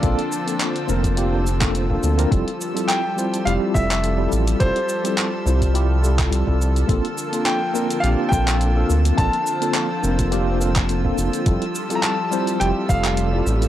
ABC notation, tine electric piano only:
X:1
M:4/4
L:1/16
Q:"Swing 16ths" 1/4=105
K:F
V:1 name="Tine electric piano"
[B,CDFA] z2 [B,CDFA]2 z [B,CDFB]2 [B,CDFG]2 z [B,CDFA]2 [B,CDFA]2 [B,CDFB] | [G,CEFA] z2 [G,CEFA]2 z [G,CEFc]2 [G,CEFG]2 [G,CEFA]3 [G,CEFA]3 | [G,CEFA] z2 [G,CEFA]2 z [G,CEFc]2 [G,CEFG]2 [G,CEFA]3 [G,CEFA]3 | [B,CDFA] z2 [B,CDFA]2 z [B,CDFB]2 [B,CDFG]2 [B,CDFA]3 [B,CDFA]3 |
[B,CDFA] z2 [B,CDFA]2 z [B,CDFB]2 [B,CDFG]2 [B,CDFA]3 [B,CDFA]3 | [G,CEFA] z2 [G,CEFA]2 z [G,CEFc]2 [G,CEFG]2 [G,CGA]3 [G,CEFA]3 |]